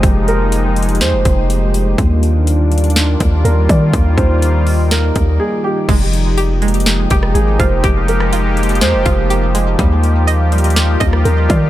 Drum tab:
CC |--------------------------------|--------------------------------|--------------------------------|x-------------------------------|
HH |x---x---x---xxxxx---x---x---x---|x---x---x---xxxxx---x---x---x---|x---x---x---o---x---x-----------|x---x---x---xxxxx---x---x---x---|
SD |----------------o---------------|----------------o---------------|----------------o---------------|----------------o-----r---------|
BD |o-------------------o-----------|o-------------------o-------o---|o---o---------------o-----------|o-------------------o-------o---|

CC |--------------------------------|--------------------------------|
HH |x---x---x---xxxxx---x---x---x---|x---x---x---xxxxx---x---x---x---|
SD |------r---------o---------------|----------------o-----r---------|
BD |o-------------------o-----------|o-------------------o-------o---|